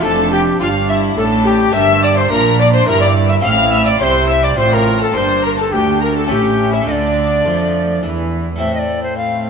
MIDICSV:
0, 0, Header, 1, 8, 480
1, 0, Start_track
1, 0, Key_signature, -1, "minor"
1, 0, Tempo, 567644
1, 39, Time_signature, 3, 2, 24, 8
1, 4839, Tempo, 577478
1, 7978, End_track
2, 0, Start_track
2, 0, Title_t, "Violin section"
2, 0, Program_c, 0, 48
2, 37, Note_on_c, 0, 81, 106
2, 278, Note_off_c, 0, 81, 0
2, 278, Note_on_c, 0, 79, 97
2, 346, Note_off_c, 0, 79, 0
2, 520, Note_on_c, 0, 77, 100
2, 754, Note_off_c, 0, 77, 0
2, 757, Note_on_c, 0, 76, 92
2, 825, Note_off_c, 0, 76, 0
2, 992, Note_on_c, 0, 81, 83
2, 1230, Note_off_c, 0, 81, 0
2, 1240, Note_on_c, 0, 79, 87
2, 1479, Note_off_c, 0, 79, 0
2, 1479, Note_on_c, 0, 88, 111
2, 1713, Note_off_c, 0, 88, 0
2, 1725, Note_on_c, 0, 86, 92
2, 1841, Note_off_c, 0, 86, 0
2, 1846, Note_on_c, 0, 84, 116
2, 1961, Note_off_c, 0, 84, 0
2, 1966, Note_on_c, 0, 82, 112
2, 2196, Note_off_c, 0, 82, 0
2, 2200, Note_on_c, 0, 86, 99
2, 2247, Note_off_c, 0, 86, 0
2, 2315, Note_on_c, 0, 84, 88
2, 2432, Note_off_c, 0, 84, 0
2, 2434, Note_on_c, 0, 82, 108
2, 2548, Note_on_c, 0, 86, 98
2, 2551, Note_off_c, 0, 82, 0
2, 2616, Note_off_c, 0, 86, 0
2, 2787, Note_on_c, 0, 88, 84
2, 2836, Note_off_c, 0, 88, 0
2, 2905, Note_on_c, 0, 89, 116
2, 3144, Note_off_c, 0, 89, 0
2, 3146, Note_on_c, 0, 88, 102
2, 3270, Note_off_c, 0, 88, 0
2, 3273, Note_on_c, 0, 86, 97
2, 3385, Note_on_c, 0, 84, 114
2, 3394, Note_off_c, 0, 86, 0
2, 3623, Note_on_c, 0, 88, 97
2, 3626, Note_off_c, 0, 84, 0
2, 3747, Note_off_c, 0, 88, 0
2, 3748, Note_on_c, 0, 86, 92
2, 3798, Note_off_c, 0, 86, 0
2, 3862, Note_on_c, 0, 84, 100
2, 3986, Note_off_c, 0, 84, 0
2, 3991, Note_on_c, 0, 82, 89
2, 4233, Note_on_c, 0, 81, 100
2, 4234, Note_off_c, 0, 82, 0
2, 4345, Note_on_c, 0, 84, 99
2, 4354, Note_off_c, 0, 81, 0
2, 4591, Note_off_c, 0, 84, 0
2, 4600, Note_on_c, 0, 82, 87
2, 4715, Note_on_c, 0, 81, 88
2, 4719, Note_off_c, 0, 82, 0
2, 4764, Note_off_c, 0, 81, 0
2, 4838, Note_on_c, 0, 79, 98
2, 5071, Note_off_c, 0, 79, 0
2, 5072, Note_on_c, 0, 82, 83
2, 5121, Note_off_c, 0, 82, 0
2, 5202, Note_on_c, 0, 81, 86
2, 5315, Note_off_c, 0, 81, 0
2, 5318, Note_on_c, 0, 79, 79
2, 5676, Note_off_c, 0, 79, 0
2, 5682, Note_on_c, 0, 76, 84
2, 5796, Note_off_c, 0, 76, 0
2, 5803, Note_on_c, 0, 74, 90
2, 6746, Note_off_c, 0, 74, 0
2, 7239, Note_on_c, 0, 64, 42
2, 7978, Note_off_c, 0, 64, 0
2, 7978, End_track
3, 0, Start_track
3, 0, Title_t, "Recorder"
3, 0, Program_c, 1, 74
3, 21, Note_on_c, 1, 69, 84
3, 260, Note_off_c, 1, 69, 0
3, 265, Note_on_c, 1, 67, 74
3, 507, Note_off_c, 1, 67, 0
3, 516, Note_on_c, 1, 65, 76
3, 571, Note_off_c, 1, 65, 0
3, 757, Note_on_c, 1, 76, 82
3, 811, Note_off_c, 1, 76, 0
3, 990, Note_on_c, 1, 69, 87
3, 1045, Note_off_c, 1, 69, 0
3, 1221, Note_on_c, 1, 67, 93
3, 1463, Note_on_c, 1, 76, 109
3, 1476, Note_off_c, 1, 67, 0
3, 1706, Note_off_c, 1, 76, 0
3, 1711, Note_on_c, 1, 74, 82
3, 1836, Note_on_c, 1, 72, 92
3, 1848, Note_off_c, 1, 74, 0
3, 1949, Note_on_c, 1, 70, 94
3, 1961, Note_off_c, 1, 72, 0
3, 2195, Note_on_c, 1, 74, 92
3, 2208, Note_off_c, 1, 70, 0
3, 2301, Note_off_c, 1, 74, 0
3, 2306, Note_on_c, 1, 72, 88
3, 2423, Note_on_c, 1, 70, 99
3, 2435, Note_off_c, 1, 72, 0
3, 2533, Note_off_c, 1, 70, 0
3, 2538, Note_on_c, 1, 74, 84
3, 2594, Note_off_c, 1, 74, 0
3, 2780, Note_on_c, 1, 76, 81
3, 2831, Note_off_c, 1, 76, 0
3, 2886, Note_on_c, 1, 77, 87
3, 2943, Note_off_c, 1, 77, 0
3, 3135, Note_on_c, 1, 76, 83
3, 3249, Note_off_c, 1, 76, 0
3, 3254, Note_on_c, 1, 74, 87
3, 3378, Note_off_c, 1, 74, 0
3, 3384, Note_on_c, 1, 73, 85
3, 3411, Note_on_c, 1, 72, 92
3, 3419, Note_off_c, 1, 73, 0
3, 3622, Note_off_c, 1, 72, 0
3, 3627, Note_on_c, 1, 76, 97
3, 3755, Note_on_c, 1, 74, 84
3, 3767, Note_off_c, 1, 76, 0
3, 3875, Note_off_c, 1, 74, 0
3, 3879, Note_on_c, 1, 72, 98
3, 4007, Note_on_c, 1, 70, 92
3, 4020, Note_off_c, 1, 72, 0
3, 4238, Note_off_c, 1, 70, 0
3, 4243, Note_on_c, 1, 69, 85
3, 4373, Note_on_c, 1, 72, 90
3, 4386, Note_off_c, 1, 69, 0
3, 4605, Note_off_c, 1, 72, 0
3, 4618, Note_on_c, 1, 70, 64
3, 4667, Note_off_c, 1, 70, 0
3, 4736, Note_on_c, 1, 69, 78
3, 4841, Note_on_c, 1, 67, 75
3, 4853, Note_off_c, 1, 69, 0
3, 5077, Note_off_c, 1, 67, 0
3, 5090, Note_on_c, 1, 70, 83
3, 5199, Note_off_c, 1, 70, 0
3, 5215, Note_on_c, 1, 69, 68
3, 5264, Note_off_c, 1, 69, 0
3, 5323, Note_on_c, 1, 67, 75
3, 5681, Note_on_c, 1, 76, 68
3, 5694, Note_off_c, 1, 67, 0
3, 5796, Note_off_c, 1, 76, 0
3, 5801, Note_on_c, 1, 75, 68
3, 5831, Note_on_c, 1, 74, 74
3, 5839, Note_off_c, 1, 75, 0
3, 6745, Note_off_c, 1, 74, 0
3, 7224, Note_on_c, 1, 76, 56
3, 7344, Note_off_c, 1, 76, 0
3, 7354, Note_on_c, 1, 75, 50
3, 7387, Note_on_c, 1, 74, 54
3, 7396, Note_off_c, 1, 75, 0
3, 7584, Note_off_c, 1, 74, 0
3, 7589, Note_on_c, 1, 72, 52
3, 7701, Note_off_c, 1, 72, 0
3, 7706, Note_on_c, 1, 77, 55
3, 7942, Note_off_c, 1, 77, 0
3, 7942, Note_on_c, 1, 77, 45
3, 7978, Note_off_c, 1, 77, 0
3, 7978, End_track
4, 0, Start_track
4, 0, Title_t, "Violin section"
4, 0, Program_c, 2, 48
4, 42, Note_on_c, 2, 69, 82
4, 276, Note_off_c, 2, 69, 0
4, 277, Note_on_c, 2, 67, 84
4, 344, Note_off_c, 2, 67, 0
4, 504, Note_on_c, 2, 65, 75
4, 572, Note_off_c, 2, 65, 0
4, 750, Note_on_c, 2, 64, 79
4, 989, Note_off_c, 2, 64, 0
4, 999, Note_on_c, 2, 69, 87
4, 1239, Note_off_c, 2, 69, 0
4, 1240, Note_on_c, 2, 67, 93
4, 1479, Note_off_c, 2, 67, 0
4, 1481, Note_on_c, 2, 76, 106
4, 1713, Note_on_c, 2, 74, 83
4, 1719, Note_off_c, 2, 76, 0
4, 1831, Note_on_c, 2, 72, 79
4, 1835, Note_off_c, 2, 74, 0
4, 1953, Note_off_c, 2, 72, 0
4, 1958, Note_on_c, 2, 70, 82
4, 2192, Note_off_c, 2, 70, 0
4, 2211, Note_on_c, 2, 74, 103
4, 2256, Note_off_c, 2, 74, 0
4, 2326, Note_on_c, 2, 72, 85
4, 2438, Note_off_c, 2, 72, 0
4, 2456, Note_on_c, 2, 70, 90
4, 2562, Note_on_c, 2, 74, 90
4, 2563, Note_off_c, 2, 70, 0
4, 2797, Note_off_c, 2, 74, 0
4, 2813, Note_on_c, 2, 76, 73
4, 2857, Note_off_c, 2, 76, 0
4, 2924, Note_on_c, 2, 77, 94
4, 3153, Note_off_c, 2, 77, 0
4, 3160, Note_on_c, 2, 76, 93
4, 3274, Note_off_c, 2, 76, 0
4, 3279, Note_on_c, 2, 74, 83
4, 3396, Note_on_c, 2, 72, 84
4, 3397, Note_off_c, 2, 74, 0
4, 3636, Note_off_c, 2, 72, 0
4, 3645, Note_on_c, 2, 76, 86
4, 3761, Note_off_c, 2, 76, 0
4, 3762, Note_on_c, 2, 74, 83
4, 3879, Note_off_c, 2, 74, 0
4, 3884, Note_on_c, 2, 72, 88
4, 3998, Note_off_c, 2, 72, 0
4, 4006, Note_on_c, 2, 70, 78
4, 4239, Note_on_c, 2, 69, 74
4, 4241, Note_off_c, 2, 70, 0
4, 4357, Note_off_c, 2, 69, 0
4, 4357, Note_on_c, 2, 72, 94
4, 4592, Note_off_c, 2, 72, 0
4, 4602, Note_on_c, 2, 70, 66
4, 4649, Note_off_c, 2, 70, 0
4, 4713, Note_on_c, 2, 69, 72
4, 4762, Note_off_c, 2, 69, 0
4, 4840, Note_on_c, 2, 67, 69
4, 5072, Note_off_c, 2, 67, 0
4, 5083, Note_on_c, 2, 70, 84
4, 5198, Note_on_c, 2, 69, 73
4, 5199, Note_off_c, 2, 70, 0
4, 5306, Note_on_c, 2, 67, 75
4, 5313, Note_off_c, 2, 69, 0
4, 5661, Note_on_c, 2, 64, 66
4, 5670, Note_off_c, 2, 67, 0
4, 5712, Note_off_c, 2, 64, 0
4, 5786, Note_on_c, 2, 62, 82
4, 6737, Note_off_c, 2, 62, 0
4, 7232, Note_on_c, 2, 60, 45
4, 7978, Note_off_c, 2, 60, 0
4, 7978, End_track
5, 0, Start_track
5, 0, Title_t, "Viola section"
5, 0, Program_c, 3, 48
5, 39, Note_on_c, 3, 62, 71
5, 508, Note_off_c, 3, 62, 0
5, 518, Note_on_c, 3, 62, 66
5, 985, Note_off_c, 3, 62, 0
5, 995, Note_on_c, 3, 62, 76
5, 1462, Note_off_c, 3, 62, 0
5, 1472, Note_on_c, 3, 62, 67
5, 1938, Note_off_c, 3, 62, 0
5, 1948, Note_on_c, 3, 62, 72
5, 2421, Note_off_c, 3, 62, 0
5, 2428, Note_on_c, 3, 64, 72
5, 2899, Note_off_c, 3, 64, 0
5, 2909, Note_on_c, 3, 64, 76
5, 3377, Note_off_c, 3, 64, 0
5, 3387, Note_on_c, 3, 64, 67
5, 3863, Note_off_c, 3, 64, 0
5, 3873, Note_on_c, 3, 65, 71
5, 4345, Note_off_c, 3, 65, 0
5, 4357, Note_on_c, 3, 62, 71
5, 4823, Note_off_c, 3, 62, 0
5, 4833, Note_on_c, 3, 62, 64
5, 5302, Note_off_c, 3, 62, 0
5, 5306, Note_on_c, 3, 61, 62
5, 5788, Note_on_c, 3, 57, 61
5, 5791, Note_off_c, 3, 61, 0
5, 7072, Note_off_c, 3, 57, 0
5, 7235, Note_on_c, 3, 57, 34
5, 7978, Note_off_c, 3, 57, 0
5, 7978, End_track
6, 0, Start_track
6, 0, Title_t, "Harpsichord"
6, 0, Program_c, 4, 6
6, 1, Note_on_c, 4, 57, 59
6, 16, Note_on_c, 4, 62, 57
6, 26, Note_on_c, 4, 65, 54
6, 37, Note_on_c, 4, 41, 63
6, 484, Note_off_c, 4, 41, 0
6, 485, Note_off_c, 4, 57, 0
6, 514, Note_on_c, 4, 43, 63
6, 962, Note_off_c, 4, 43, 0
6, 996, Note_on_c, 4, 45, 65
6, 1432, Note_off_c, 4, 62, 0
6, 1437, Note_off_c, 4, 65, 0
6, 1443, Note_off_c, 4, 45, 0
6, 1451, Note_on_c, 4, 62, 56
6, 1462, Note_on_c, 4, 70, 64
6, 1476, Note_on_c, 4, 43, 63
6, 1922, Note_off_c, 4, 43, 0
6, 1954, Note_on_c, 4, 46, 64
6, 2392, Note_off_c, 4, 62, 0
6, 2399, Note_off_c, 4, 70, 0
6, 2400, Note_off_c, 4, 46, 0
6, 2410, Note_on_c, 4, 64, 53
6, 2422, Note_on_c, 4, 70, 55
6, 2437, Note_on_c, 4, 43, 59
6, 2874, Note_off_c, 4, 64, 0
6, 2875, Note_on_c, 4, 60, 64
6, 2880, Note_off_c, 4, 43, 0
6, 2884, Note_on_c, 4, 64, 62
6, 2892, Note_off_c, 4, 70, 0
6, 2898, Note_on_c, 4, 69, 62
6, 2912, Note_on_c, 4, 45, 73
6, 3359, Note_off_c, 4, 45, 0
6, 3391, Note_on_c, 4, 48, 67
6, 3827, Note_off_c, 4, 60, 0
6, 3832, Note_off_c, 4, 64, 0
6, 3839, Note_off_c, 4, 69, 0
6, 3841, Note_off_c, 4, 48, 0
6, 3841, Note_on_c, 4, 60, 51
6, 3855, Note_on_c, 4, 65, 51
6, 3881, Note_on_c, 4, 45, 64
6, 4324, Note_off_c, 4, 60, 0
6, 4325, Note_off_c, 4, 45, 0
6, 4329, Note_on_c, 4, 58, 57
6, 4331, Note_off_c, 4, 65, 0
6, 4339, Note_on_c, 4, 62, 55
6, 4353, Note_on_c, 4, 67, 52
6, 4365, Note_on_c, 4, 43, 59
6, 4808, Note_off_c, 4, 43, 0
6, 4844, Note_on_c, 4, 38, 59
6, 5272, Note_off_c, 4, 58, 0
6, 5277, Note_off_c, 4, 62, 0
6, 5284, Note_off_c, 4, 38, 0
6, 5284, Note_off_c, 4, 67, 0
6, 5290, Note_on_c, 4, 57, 51
6, 5300, Note_on_c, 4, 61, 42
6, 5312, Note_on_c, 4, 64, 51
6, 5323, Note_on_c, 4, 45, 53
6, 5738, Note_off_c, 4, 57, 0
6, 5748, Note_on_c, 4, 57, 51
6, 5765, Note_on_c, 4, 62, 53
6, 5766, Note_off_c, 4, 45, 0
6, 5773, Note_off_c, 4, 61, 0
6, 5775, Note_on_c, 4, 65, 49
6, 5780, Note_off_c, 4, 64, 0
6, 5790, Note_on_c, 4, 50, 52
6, 6242, Note_off_c, 4, 50, 0
6, 6280, Note_on_c, 4, 53, 51
6, 6708, Note_off_c, 4, 57, 0
6, 6729, Note_off_c, 4, 53, 0
6, 6757, Note_on_c, 4, 52, 47
6, 7195, Note_off_c, 4, 62, 0
6, 7196, Note_on_c, 4, 57, 29
6, 7200, Note_off_c, 4, 65, 0
6, 7208, Note_off_c, 4, 52, 0
6, 7213, Note_on_c, 4, 60, 30
6, 7220, Note_on_c, 4, 64, 33
6, 7236, Note_on_c, 4, 45, 36
6, 7978, Note_off_c, 4, 45, 0
6, 7978, Note_off_c, 4, 57, 0
6, 7978, Note_off_c, 4, 60, 0
6, 7978, Note_off_c, 4, 64, 0
6, 7978, End_track
7, 0, Start_track
7, 0, Title_t, "Cello section"
7, 0, Program_c, 5, 48
7, 41, Note_on_c, 5, 41, 84
7, 510, Note_off_c, 5, 41, 0
7, 524, Note_on_c, 5, 43, 77
7, 991, Note_off_c, 5, 43, 0
7, 994, Note_on_c, 5, 45, 90
7, 1466, Note_off_c, 5, 45, 0
7, 1478, Note_on_c, 5, 43, 89
7, 1947, Note_off_c, 5, 43, 0
7, 1962, Note_on_c, 5, 46, 79
7, 2428, Note_off_c, 5, 46, 0
7, 2432, Note_on_c, 5, 43, 86
7, 2902, Note_off_c, 5, 43, 0
7, 2915, Note_on_c, 5, 45, 82
7, 3385, Note_off_c, 5, 45, 0
7, 3390, Note_on_c, 5, 48, 78
7, 3864, Note_off_c, 5, 48, 0
7, 3875, Note_on_c, 5, 45, 78
7, 4346, Note_off_c, 5, 45, 0
7, 4366, Note_on_c, 5, 43, 76
7, 4833, Note_off_c, 5, 43, 0
7, 4842, Note_on_c, 5, 38, 77
7, 5315, Note_on_c, 5, 45, 72
7, 5316, Note_off_c, 5, 38, 0
7, 5793, Note_on_c, 5, 50, 76
7, 5796, Note_off_c, 5, 45, 0
7, 6267, Note_off_c, 5, 50, 0
7, 6281, Note_on_c, 5, 53, 68
7, 6763, Note_off_c, 5, 53, 0
7, 6766, Note_on_c, 5, 52, 68
7, 7236, Note_off_c, 5, 52, 0
7, 7247, Note_on_c, 5, 45, 43
7, 7978, Note_off_c, 5, 45, 0
7, 7978, End_track
8, 0, Start_track
8, 0, Title_t, "Double bass section"
8, 0, Program_c, 6, 48
8, 41, Note_on_c, 6, 29, 72
8, 510, Note_off_c, 6, 29, 0
8, 519, Note_on_c, 6, 31, 66
8, 989, Note_off_c, 6, 31, 0
8, 1001, Note_on_c, 6, 33, 71
8, 1470, Note_off_c, 6, 33, 0
8, 1477, Note_on_c, 6, 31, 83
8, 1946, Note_off_c, 6, 31, 0
8, 1961, Note_on_c, 6, 34, 83
8, 2428, Note_off_c, 6, 34, 0
8, 2437, Note_on_c, 6, 31, 71
8, 2905, Note_off_c, 6, 31, 0
8, 2914, Note_on_c, 6, 33, 80
8, 3384, Note_off_c, 6, 33, 0
8, 3394, Note_on_c, 6, 36, 75
8, 3866, Note_off_c, 6, 36, 0
8, 3875, Note_on_c, 6, 33, 74
8, 4346, Note_off_c, 6, 33, 0
8, 4358, Note_on_c, 6, 31, 74
8, 4829, Note_off_c, 6, 31, 0
8, 4843, Note_on_c, 6, 38, 73
8, 5316, Note_off_c, 6, 38, 0
8, 5319, Note_on_c, 6, 33, 60
8, 5796, Note_on_c, 6, 38, 71
8, 5798, Note_off_c, 6, 33, 0
8, 6269, Note_off_c, 6, 38, 0
8, 6277, Note_on_c, 6, 41, 59
8, 6759, Note_on_c, 6, 40, 64
8, 6761, Note_off_c, 6, 41, 0
8, 7232, Note_off_c, 6, 40, 0
8, 7978, End_track
0, 0, End_of_file